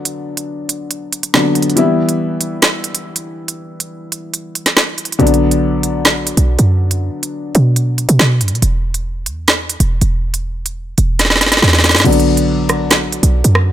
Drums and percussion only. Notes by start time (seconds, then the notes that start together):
0.05 closed hi-hat
0.37 closed hi-hat
0.69 closed hi-hat
0.91 closed hi-hat
1.13 closed hi-hat
1.23 closed hi-hat
1.34 snare
1.55 closed hi-hat
1.62 closed hi-hat
1.70 closed hi-hat
1.77 closed hi-hat
2.09 closed hi-hat
2.41 closed hi-hat
2.62 snare, closed hi-hat
2.84 closed hi-hat
2.95 closed hi-hat
3.16 closed hi-hat
3.48 closed hi-hat
3.80 closed hi-hat
4.12 closed hi-hat
4.34 closed hi-hat
4.55 closed hi-hat
4.66 snare, closed hi-hat
4.77 snare
4.98 closed hi-hat, open hi-hat
5.05 closed hi-hat
5.12 closed hi-hat
5.20 closed hi-hat
5.27 closed hi-hat
5.34 closed hi-hat
5.51 closed hi-hat
5.83 closed hi-hat
6.05 snare, closed hi-hat
6.27 closed hi-hat
6.37 closed hi-hat
6.59 closed hi-hat
6.91 closed hi-hat
7.23 closed hi-hat
7.55 closed hi-hat
7.76 closed hi-hat
7.98 closed hi-hat
8.09 closed hi-hat
8.19 snare
8.41 closed hi-hat
8.48 closed hi-hat
8.55 closed hi-hat
8.62 closed hi-hat
8.94 closed hi-hat
9.26 closed hi-hat
9.48 snare, closed hi-hat
9.70 closed hi-hat
9.80 closed hi-hat
10.01 closed hi-hat
10.34 closed hi-hat
10.66 closed hi-hat
10.98 closed hi-hat
11.19 snare, closed hi-hat
11.25 snare
11.30 snare
11.36 snare
11.41 snare, closed hi-hat
11.46 snare
11.52 snare, closed hi-hat
11.57 snare
11.62 snare
11.68 snare
11.73 snare
11.79 snare
11.84 snare, closed hi-hat, open hi-hat
11.89 snare, closed hi-hat
11.95 snare, closed hi-hat
12.00 snare
12.05 closed hi-hat, crash
12.12 closed hi-hat
12.20 closed hi-hat
12.37 closed hi-hat
12.69 cross-stick, closed hi-hat
12.91 snare, closed hi-hat
13.12 closed hi-hat
13.23 closed hi-hat
13.44 closed hi-hat
13.55 cross-stick